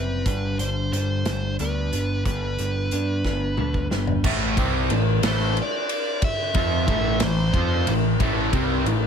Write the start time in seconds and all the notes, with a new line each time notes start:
Already playing: F#1 C3 G3 C4 E4 B4
0.25 G1 G2 D3 G3 D4, kick, closed hi-hat
0.59 G1 G3 D4 C5, closed hi-hat
0.92 G1 D3 G3 D4 C5, closed hi-hat
1.25 G1 G3 D4, snare, closed hi-hat
1.59 D2 D3 G3 B3 D4 B4, closed hi-hat
1.91 G1 G3 B3 D4, closed hi-hat
2.25 G1 G2 D3 G3 B3 D4 B4, kick, closed hi-hat
2.58 G1 G3 B3 D4, closed hi-hat
2.91 G2 D3 G3 B3 D4, closed hi-hat
3.24 G1 G3 B3 D4, kick, snare
3.57 D2 D3 G3 B3 D4, mid tom
3.74 kick
3.90 G1 G3 B3 D4, snare
4.07 floor tom
4.24 A1 A2 E3 A3, kick, crash
4.57 C2 C3 G3 C4, kick, ride
4.90 A1 A2 E3, ride
5.22 A1 A2 E3 A3, snare, ride
5.28 C5
5.57 ride
5.62 D5
5.89 ride
6.22 E5, kick, ride
6.54 F2 F3 C4 F4, kick, ride
6.87 A1 A2 E3 A3, kick, ride
7.20 A1 A2 E3 C5, snare, ride
7.54 F2 F3 C4 F4, kick, ride
7.87 A1 A2 E3, ride
8.20 A1 A2 E3 A3, kick, ride
8.53 C2 C3 G3 C4, kick, ride
8.86 A1 A2 E3, ride